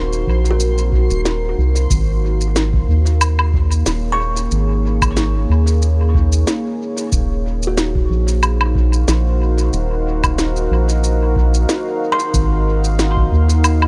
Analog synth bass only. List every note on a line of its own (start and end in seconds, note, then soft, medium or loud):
0.00 0.25 D#1 medium
0.27 1.10 A#1 medium
1.10 1.55 D#1 medium
1.58 1.87 C2 medium
1.90 2.85 G#1 loud
2.89 3.83 D#2 medium
3.86 4.49 D#1 medium
4.52 5.46 G#1 loud
5.50 6.44 D#2 medium
7.12 8.07 D#1 loud
8.10 9.05 A#1 medium
9.08 9.70 A#1 loud
9.73 10.68 D#1 loud
10.71 11.66 A#1 medium
12.34 13.29 G#1 loud
13.32 13.88 D#2 medium